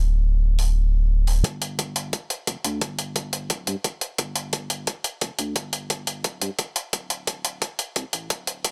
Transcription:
0.00 1.43 D1 medium
0.59 open hi-hat medium
1.27 open hi-hat medium
1.44 2.12 G1 loud
1.44 kick medium
1.44 closed hi-hat medium
1.62 closed hi-hat loud
1.79 kick medium
1.79 closed hi-hat medium
1.96 closed hi-hat medium
2.13 kick loud
2.13 closed hi-hat medium
2.30 closed hi-hat medium
2.47 2.55 F1 medium
2.47 kick medium
2.47 closed hi-hat medium
2.64 2.80 D2 loud
2.64 closed hi-hat medium
2.81 3.49 G1 loud
2.81 kick medium
2.81 closed hi-hat medium
2.99 closed hi-hat medium
3.16 kick medium
3.16 closed hi-hat medium
3.33 closed hi-hat loud
3.50 3.66 D1 loud
3.50 kick loud
3.50 closed hi-hat medium
3.67 3.75 G2 medium
3.67 closed hi-hat medium
3.84 kick medium
3.84 closed hi-hat medium
4.01 closed hi-hat medium
4.18 4.86 G1 loud
4.18 kick loud
4.18 closed hi-hat medium
4.36 closed hi-hat medium
4.53 kick medium
4.53 closed hi-hat medium
4.70 closed hi-hat medium
4.87 kick medium
4.87 closed hi-hat medium
5.04 closed hi-hat medium
5.21 5.30 F1 loud
5.21 kick loud
5.21 closed hi-hat medium
5.39 5.54 D2 loud
5.39 closed hi-hat medium
5.56 6.23 G1 loud
5.56 kick medium
5.56 closed hi-hat medium
5.73 closed hi-hat medium
5.90 kick medium
5.90 closed hi-hat medium
6.07 closed hi-hat medium
6.24 6.40 D1 loud
6.24 kick medium
6.24 closed hi-hat medium
6.42 6.50 G2 medium
6.42 closed hi-hat medium
6.59 kick loud
6.59 closed hi-hat medium
6.76 closed hi-hat medium
6.93 7.60 D1 loud
6.93 kick loud
6.93 closed hi-hat medium
7.10 closed hi-hat medium
7.27 kick loud
7.27 closed hi-hat medium
7.45 closed hi-hat medium
7.62 kick loud
7.62 closed hi-hat medium
7.79 closed hi-hat medium
7.96 8.04 C2 loud
7.96 kick loud
7.96 closed hi-hat medium
8.13 8.29 A1 loud
8.13 closed hi-hat medium
8.30 8.72 D1 medium
8.30 kick loud
8.30 closed hi-hat medium
8.47 closed hi-hat medium
8.64 kick loud
8.64 closed hi-hat medium

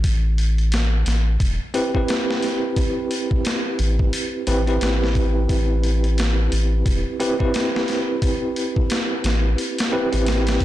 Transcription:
0.04 1.04 A1 loud
0.04 kick medium
0.04 open hi-hat medium
0.38 open hi-hat medium
0.58 closed hi-hat soft
0.72 snare loud
0.72 open hi-hat medium
1.06 1.37 A1 medium
1.06 snare soft
1.06 open hi-hat medium
1.40 1.58 E1 medium
1.40 kick loud
1.40 open hi-hat medium
1.74 1.90 C4 medium
1.74 1.90 E4 medium
1.74 1.90 G4 medium
1.74 1.90 B4 medium
1.74 open hi-hat medium
1.94 4.44 C4 medium
1.94 4.44 E4 medium
1.94 4.44 G4 medium
1.94 4.45 B4 medium
1.94 kick medium
2.08 snare loud
2.08 open hi-hat medium
2.31 snare medium
2.43 snare soft
2.43 open hi-hat medium
2.76 kick loud
2.76 open hi-hat medium
3.11 open hi-hat medium
3.31 kick medium
3.45 snare loud
3.45 open hi-hat medium
3.79 4.10 A1 medium
3.79 open hi-hat medium
3.99 kick medium
4.13 open hi-hat medium
4.47 4.78 A1 loud
4.47 4.63 C4 medium
4.47 4.63 E4 medium
4.47 4.63 G4 medium
4.47 4.63 B4 medium
4.47 open hi-hat medium
4.67 7.16 C4 medium
4.67 7.17 E4 medium
4.67 7.17 G4 medium
4.67 7.17 B4 medium
4.67 closed hi-hat soft
4.81 5.47 A1 medium
4.81 snare loud
4.81 open hi-hat medium
5.03 snare soft
5.15 kick medium
5.15 open hi-hat medium
5.49 6.49 A1 loud
5.49 kick loud
5.49 open hi-hat medium
5.83 open hi-hat medium
6.04 closed hi-hat soft
6.18 snare loud
6.18 open hi-hat medium
6.52 6.83 A1 medium
6.52 open hi-hat medium
6.86 7.04 E1 medium
6.86 kick loud
6.86 open hi-hat medium
7.20 7.35 C4 medium
7.20 7.35 E4 medium
7.20 7.35 G4 medium
7.20 7.36 B4 medium
7.20 open hi-hat medium
7.39 9.89 C4 medium
7.39 9.89 E4 medium
7.39 9.89 G4 medium
7.39 9.90 B4 medium
7.39 kick medium
7.54 snare loud
7.54 open hi-hat medium
7.76 snare medium
7.88 snare soft
7.88 open hi-hat medium
8.22 kick loud
8.22 open hi-hat medium
8.56 open hi-hat medium
8.76 kick loud
8.90 snare loud
8.90 open hi-hat medium
9.24 9.55 A1 medium
9.24 snare loud
9.24 open hi-hat medium
9.58 open hi-hat medium
9.78 snare loud
9.78 open hi-hat medium
9.92 10.08 C4 medium
9.92 10.08 E4 medium
9.92 10.08 G4 medium
9.92 10.08 B4 loud
10.12 10.58 A1 medium
10.12 10.65 C4 medium
10.12 10.65 E4 medium
10.12 10.65 G4 medium
10.12 10.65 B4 medium
10.12 open hi-hat medium
10.26 snare loud
10.26 open hi-hat medium
10.47 snare loud
10.47 open hi-hat medium
10.60 10.65 C2 loud
10.60 kick medium
10.60 open hi-hat medium

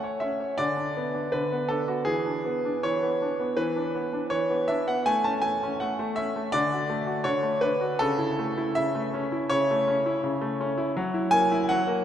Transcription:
0.00 0.57 A3 soft
0.00 0.33 C#5 medium
0.00 0.21 F#5 medium
0.20 0.51 C#4 soft
0.20 0.58 E5 medium
0.40 0.59 C#5 soft
0.58 1.32 D3 medium
0.58 1.33 D5 medium
0.77 1.07 D4 soft
0.97 1.26 B3 soft
1.14 1.44 D4 soft
1.32 2.06 D3 medium
1.32 1.70 B4 medium
1.52 1.82 B3 soft
1.68 2.00 D4 soft
1.68 1.88 A4 medium
1.88 2.07 B3 soft
1.88 2.07 F#4 medium
2.05 2.83 E3 medium
2.05 2.83 G#4 medium
2.26 2.57 D4 soft
2.46 2.76 B3 medium
2.65 2.95 D4 soft
2.83 3.56 E3 medium
2.83 3.58 C#5 medium
3.03 3.33 B3 medium
3.22 3.51 D4 soft
3.40 3.70 B3 medium
3.57 4.30 E3 medium
3.57 4.31 B4 medium
3.76 4.06 D4 soft
3.95 4.25 B3 soft
4.13 4.43 D4 soft
4.30 5.03 E3 medium
4.30 4.68 C#5 medium
4.50 4.80 B3 medium
4.68 4.99 D4 medium
4.68 4.87 E5 medium
4.88 5.06 B3 soft
4.88 5.06 F#5 medium
5.06 5.41 A3 medium
5.06 5.24 G#5 loud
5.24 5.54 C#4 soft
5.24 5.43 A5 medium
5.42 5.72 A3 medium
5.42 5.79 G#5 medium
5.63 5.92 C#4 medium
5.80 5.98 A3 medium
5.80 6.17 F#5 medium
5.99 6.28 A3 medium
6.16 6.46 C#4 medium
6.16 6.53 E5 loud
6.36 6.54 A3 medium
6.52 7.23 D3 medium
6.52 7.25 D5 loud
6.72 7.01 F#4 medium
6.90 7.19 A3 medium
7.06 7.36 F#4 medium
7.24 7.97 D3 medium
7.24 7.62 C#5 medium
7.43 7.73 A3 medium
7.61 7.92 D4 medium
7.61 7.99 B4 medium
7.81 8.00 F#4 medium
7.99 8.75 C#3 medium
7.99 8.75 A4 loud
8.18 8.49 E4 medium
8.39 8.69 A3 medium
8.57 8.87 E4 medium
8.75 9.49 C#3 medium
8.75 9.49 E5 loud
8.95 9.24 A3 medium
9.14 9.43 C#4 medium
9.32 9.61 E4 medium
9.49 10.22 C#3 medium
9.49 10.22 C#5 loud
9.71 9.98 A3 medium
9.88 10.16 C#4 medium
10.06 10.34 E4 medium
10.23 10.94 C#3 medium
10.41 10.70 A3 medium
10.61 10.89 C#4 medium
10.78 10.95 E4 medium
10.97 11.69 F#3 medium
11.14 11.43 E4 medium
11.31 11.61 A#3 medium
11.31 11.67 G#5 loud
11.52 11.80 E4 medium
11.69 12.04 F#3 medium
11.69 12.04 F#5 loud
11.87 12.04 A#3 medium

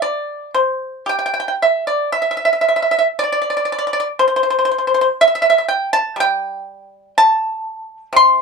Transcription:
0.02 0.50 D5 medium
0.54 1.04 C5 medium
1.06 1.83 G4 medium
1.06 1.16 G5 medium
1.19 1.24 G5 medium
1.26 1.32 G5 medium
1.34 1.39 G5 soft
1.40 1.47 G5 medium
1.48 1.55 G5 soft
1.62 1.86 E5 medium
1.87 2.12 D5 medium
2.12 2.20 E5 medium
2.22 2.29 E5 medium
2.31 2.36 E5 medium
2.37 2.44 E5 medium
2.45 2.52 E5 medium
2.53 2.60 E5 soft
2.61 2.67 E5 medium
2.69 2.75 E5 soft
2.76 2.81 E5 medium
2.82 2.90 E5 soft
2.91 2.97 E5 medium
2.99 3.06 E5 medium
3.19 3.22 D5 medium
3.24 3.31 D5 medium
3.32 3.40 D5 medium
3.42 3.48 D5 soft
3.50 3.56 D5 medium
3.57 3.63 D5 medium
3.65 3.71 D5 medium
3.72 3.77 D5 medium
3.79 3.85 D5 medium
3.87 3.92 D5 soft
3.93 3.99 D5 medium
4.00 4.07 D5 medium
4.19 4.26 C5 medium
4.28 4.34 C5 medium
4.36 4.42 C5 medium
4.43 4.49 C5 medium
4.50 4.56 C5 medium
4.59 4.64 C5 medium
4.65 4.70 C5 medium
4.71 4.77 C5 soft
4.78 4.85 C5 soft
4.87 4.93 C5 soft
4.94 5.00 C5 medium
5.01 5.08 C5 medium
5.21 5.26 E5 medium
5.28 5.34 E5 medium
5.35 5.41 E5 medium
5.42 5.49 E5 medium
5.50 5.56 E5 medium
5.58 5.64 E5 medium
5.69 5.92 G5 medium
5.93 6.16 A5 loud
6.16 8.12 G3 medium
6.20 7.14 G5 loud
7.18 8.13 A5 loud
8.13 8.42 C3 medium
8.13 8.42 C6 loud

